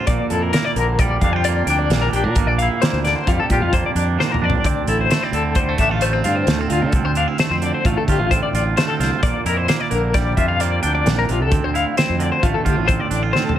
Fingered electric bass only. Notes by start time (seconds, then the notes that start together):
0.07 A#1
0.30 F2
0.76 A#1
1.21 F2
1.66 D2
1.90 A#1
2.12 A#1
2.23 A#2
2.35 G1
2.47 A#1
2.93 D2
3.27 F2
3.50 A#2
3.61 F2
3.95 F2
4.41 F2
4.64 D2
4.86 A1
5.32 D2
5.79 A1
6.24 G2
6.47 D2
6.70 D2
6.82 D3
6.93 C2
7.04 D2
7.50 F2
7.85 A1
8.08 D3
8.18 A1
8.53 A1
8.99 C2
9.23 A#1
9.45 F2
9.91 A#1
10.37 F2
10.84 D2
11.06 A#1
11.29 A#1
11.41 C2
11.51 D2
11.63 D2
12.09 F2
12.43 A1
12.65 D3
12.78 A1
13.11 A1